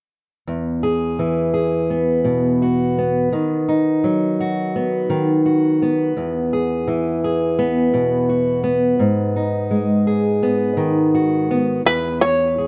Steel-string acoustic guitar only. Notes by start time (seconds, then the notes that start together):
0.47 E2
0.83 G#4
1.19 E3
1.54 G#4
1.90 B3
2.24 B2
2.62 F#4
2.98 B3
3.33 D#3
3.68 D#4
4.04 F#3
4.40 F#4
4.76 B3
5.10 D#3
5.46 F#4
5.82 B3
6.17 E2
6.53 G#4
6.87 E3
7.24 G#4
7.59 B3
7.94 B2
8.29 F#4
8.64 B3
8.99 G#2
9.36 D#4
9.71 G#3
10.07 G#4
10.43 B3
10.77 D#3
11.15 F#4
11.51 B3
11.85 E2
12.58 G#4